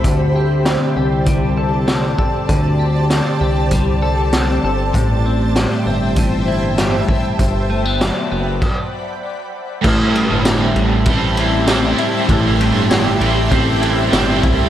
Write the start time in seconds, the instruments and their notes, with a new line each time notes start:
Already playing: clean electric guitar G3 C4 E4 A4, ambient pad G4 C5
0.04 analog synth bass D2, clean electric guitar D3, ambient pad D5 A5, kick, closed hi-hat
0.36 clean electric guitar G4
0.65 clean electric guitar C4, snare, closed hi-hat
0.96 analog synth bass C2, clean electric guitar G4
1.26 clean electric guitar G3, kick, closed hi-hat
1.57 clean electric guitar A4
1.88 clean electric guitar C4, snare, closed hi-hat
2.18 clean electric guitar A4, kick
2.49 analog synth bass D2, clean electric guitar D3, kick, closed hi-hat
2.79 clean electric guitar G4
3.10 clean electric guitar C4, snare, closed hi-hat
3.41 analog synth bass C2, clean electric guitar G4
3.71 clean electric guitar G3, kick, closed hi-hat
4.02 clean electric guitar A4
4.33 clean electric guitar C4, snare, closed hi-hat
4.64 analog synth bass G1, clean electric guitar A4
4.94 analog synth bass A1, clean electric guitar A2, ambient pad C5 E5 G5, kick, closed hi-hat
5.26 clean electric guitar C4
5.56 clean electric guitar G3, snare, closed hi-hat
5.86 analog synth bass G1, clean electric guitar C4
6.16 clean electric guitar E3, kick, closed hi-hat
6.48 clean electric guitar E4
6.78 clean electric guitar G3, snare, closed hi-hat
7.09 clean electric guitar E4, kick
7.39 analog synth bass G1, ambient pad D5 F#5 B5, kick, closed hi-hat
7.70 clean electric guitar A3
7.85 clean electric guitar B3
8.01 clean electric guitar F#3, snare, closed hi-hat
8.32 analog synth bass F#1, clean electric guitar B3
8.62 kick, crash
9.82 analog synth bass A1, overdriven electric guitar A2 E3 G3, clean electric guitar A2 E4, ambient pad G4 E5 A5 C6, kick, crash
9.87 overdriven electric guitar C4 E4 A4
10.15 clean electric guitar G3, ride
10.31 analog synth bass G1
10.45 clean electric guitar E4, snare, ride, tambourine
10.76 analog synth bass A1, clean electric guitar G3, ride
11.05 analog synth bass A1, overdriven electric guitar G3 C4 E4, clean electric guitar C4, kick, ride
11.10 overdriven electric guitar A4
11.37 clean electric guitar E4, ride
11.66 overdriven electric guitar G3 C4 E4, clean electric guitar C4, snare, ride, tambourine
11.72 overdriven electric guitar A4
11.98 clean electric guitar E4, ride
12.28 analog synth bass A1, overdriven electric guitar A2 E3 G3 C4 E4, clean electric guitar A2 E4, ambient pad G5, kick, ride
12.32 overdriven electric guitar A4
12.60 clean electric guitar G3, ride
12.75 analog synth bass G1
12.90 clean electric guitar E4, snare, ride, tambourine
13.19 analog synth bass A1, clean electric guitar G3, overdriven electric guitar C4 E4 A4, ride
13.25 overdriven electric guitar G3
13.49 analog synth bass A1, overdriven electric guitar G3 C4 E4, clean electric guitar C4, kick, ride
13.55 overdriven electric guitar A4
13.81 clean electric guitar E4, ride
14.11 analog synth bass G1, overdriven electric guitar G3 C4 E4, clean electric guitar C4, snare, ride, tambourine
14.16 overdriven electric guitar A4
14.43 analog synth bass C2, clean electric guitar E4, kick, ride